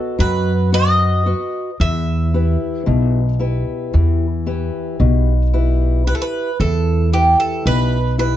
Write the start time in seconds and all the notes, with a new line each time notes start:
Already playing: B3 F#4 A4 B4 D#5
0.19 F#2 F#3 B4
0.72 F#4 B4 D#5
1.26 F#4 B4 D#5
1.80 E2 E3 E5
2.34 E4 G4 B4
2.86 B1 B2
3.39 E4 G4 B4
3.94 E2 E3
4.46 E4 G4 B4
5.00 B1 B2
5.53 E4 G4 B4
6.07 E4 G4 B4
6.15 A4
6.22 B4
6.60 E2 E3 A4
7.12 E4 G4 B4
7.40 A4
7.66 B1 B2 B4
8.18 E4 G4 B4